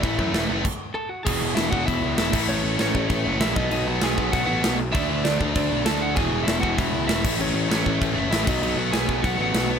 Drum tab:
CC |x-x-x---|x-x-x-xx|x-x-x-x-|x-x-x-x-|
SD |--o-----|--o---o-|--o---o-|--o---o-|
BD |oo--o---|o--oo--o|---oo--o|---oo---|

CC |x-x-x-x-|x-x-x-xx|x-x-x-xx|x-x-x-x-|
SD |--o---o-|--o---o-|--o---o-|--o---o-|
BD |o--oo---|o--oo--o|---oo--o|---oo---|